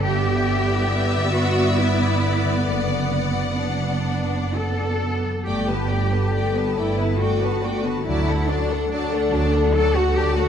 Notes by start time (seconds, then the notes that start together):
Already playing: G1 B3 D4 B4
0.04 G2 B3 G4 D5 E5
0.27 D3
0.48 D4
0.69 E4
0.90 B4
1.12 D5
1.33 F#4 B4
1.56 E4
1.78 D4 E4
1.99 D3
2.21 D4
2.44 D3
2.66 F#1 F#2 B3 F#5
2.89 F#3
3.11 D4
3.35 F#4
3.58 D4 B4
3.83 D5
4.07 B4
4.32 F#4
4.54 D4 A4
4.79 F#3
5.03 D4
5.26 F#3
5.46 G1 G2 A3 G4 D5 G5
5.68 D3 B3 B4 A5
5.90 A3 D4 D5 G5
6.13 B3 A4 B4 A5
6.34 A3 B4 D5 G5
6.56 B3 B4 D5 A5
6.76 G1 A3 E4 B4 D5 G5
6.99 B3 A4 B4 A5
7.19 A3 D4 F#4 D5 G5
7.42 D3 B3 B4 A5
7.64 A3 D4 D5 G5
7.85 D3 B3 B4 A5
8.05 D2 D3 F#3 E4 D5 A5
8.27 A3 A4 F#5
8.47 F#3 D4 D5 A5
8.70 A3 F#4 A4 F#5
8.90 F#3 D4 A4 D5 A5
9.11 A3 A4 D5 F#5
9.32 D2 F#3 A4 D5 A5
9.52 A3 F#4 A4 F#5
9.71 F#3 A4 A5
9.76 D4 D5
9.93 A3 F#4 A4 F#5
10.14 F#3 D4 G4 A5
10.19 D5
10.36 A3 F#4 A4 F#5